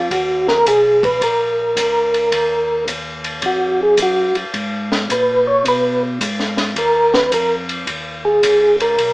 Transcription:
Already playing: tonewheel organ F4
0.10 tonewheel organ D#2 F#4, kick, ride
0.48 tonewheel organ A#4, snare
0.66 tonewheel organ B1 G#4, kick, hi-hat pedal, ride
1.03 tonewheel organ B4, kick, ride
1.21 tonewheel organ A#1 A#4, kick, ride
1.76 tonewheel organ C#2, kick, hi-hat pedal, ride
2.14 ride
2.32 tonewheel organ D#2, kick, ride
2.87 tonewheel organ D#2, kick, hi-hat pedal, ride
3.24 ride
3.42 tonewheel organ F2 F#4, kick, ride
3.83 tonewheel organ G#4
3.97 tonewheel organ F#2, kick, hi-hat pedal, ride
4.02 tonewheel organ F#4
4.35 tonewheel organ F#2, ride
4.54 tonewheel organ G#2, kick, ride
4.92 snare
5.09 tonewheel organ A#2 B4, kick, hi-hat pedal, ride
5.47 tonewheel organ C#5
5.65 tonewheel organ B2 B4, kick, ride
6.21 tonewheel organ G#2, kick, hi-hat pedal, ride
6.40 snare
6.57 snare, ride
6.76 tonewheel organ D#2 A#4, kick, ride
7.14 tonewheel organ B4, snare
7.32 tonewheel organ F2 A#4, kick, hi-hat pedal, ride
7.69 ride
7.87 tonewheel organ D#2, kick, ride
8.25 tonewheel organ G#4
8.42 tonewheel organ C#2, kick, hi-hat pedal, ride
8.80 tonewheel organ A#4, ride
8.98 tonewheel organ B1, kick, ride

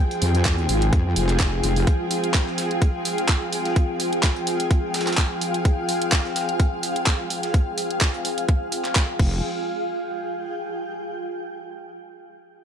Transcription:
Already playing: string section F3 C4 G#4 G5, ambient pad F4 G#4 G5
0.11 closed hi-hat
0.22 wobble bass F2, open hi-hat
0.35 closed hi-hat
0.45 kick, snare, clap, closed hi-hat
0.58 closed hi-hat
0.69 wobble bass G#1, closed hi-hat, open hi-hat
0.82 closed hi-hat
0.93 wobble bass F2, kick, closed hi-hat
1.16 wobble bass F1, closed hi-hat, open hi-hat
1.29 clap, closed hi-hat
1.40 kick, snare, clap, closed hi-hat
1.64 wobble bass F1, closed hi-hat, open hi-hat
1.76 open hi-hat
1.87 string section G5, kick, closed hi-hat
2.11 closed hi-hat, open hi-hat
2.24 closed hi-hat
2.34 kick, snare, clap, closed hi-hat
2.47 snare
2.58 snare, closed hi-hat, open hi-hat
2.71 closed hi-hat
2.82 kick, closed hi-hat
3.05 closed hi-hat, open hi-hat
3.18 closed hi-hat
3.29 kick, snare, clap, closed hi-hat
3.53 closed hi-hat, open hi-hat
3.61 ambient pad F5, closed hi-hat
3.65 snare
3.76 kick, closed hi-hat
4.00 closed hi-hat, open hi-hat
4.13 closed hi-hat
4.23 kick, snare, clap, closed hi-hat
4.36 closed hi-hat
4.47 closed hi-hat, open hi-hat
4.60 closed hi-hat
4.71 kick, closed hi-hat
4.94 snare, closed hi-hat, open hi-hat
5.01 snare, closed hi-hat
5.07 snare, clap, closed hi-hat
5.13 snare, closed hi-hat
5.17 kick, snare, clap, closed hi-hat
5.41 closed hi-hat, open hi-hat
5.54 closed hi-hat
5.65 kick, closed hi-hat
5.89 closed hi-hat, open hi-hat
6.02 closed hi-hat
6.12 kick, snare, clap, closed hi-hat
6.25 snare
6.36 snare, closed hi-hat, open hi-hat
6.49 closed hi-hat
6.60 kick, closed hi-hat
6.83 closed hi-hat, open hi-hat
6.96 closed hi-hat
7.06 kick, snare, clap, closed hi-hat
7.30 closed hi-hat, open hi-hat
7.43 snare, closed hi-hat
7.54 kick, closed hi-hat
7.78 closed hi-hat, open hi-hat
7.91 closed hi-hat
8.01 kick, snare, clap, closed hi-hat
8.14 closed hi-hat
8.25 closed hi-hat, open hi-hat
8.38 closed hi-hat
8.48 kick, closed hi-hat
8.72 closed hi-hat, open hi-hat
8.85 clap, closed hi-hat
8.95 kick, snare, clap, closed hi-hat
9.19 wobble bass F1, string section F3 C4 G#4 G5, ambient pad F4, kick, crash
9.27 ambient pad G#4
9.58 ambient pad G5

